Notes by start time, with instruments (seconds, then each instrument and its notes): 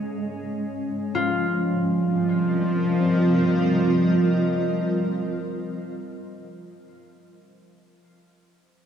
Already playing: ambient pad G#3 C#4 C#5 D#5, synth drone G#3 G#4
1.13 soft synth lead F3, synth drone F3 F4, ambient pad G3, harp F4
1.31 ambient pad C4
1.48 ambient pad F4
1.64 ambient pad A#4
1.82 ambient pad D#5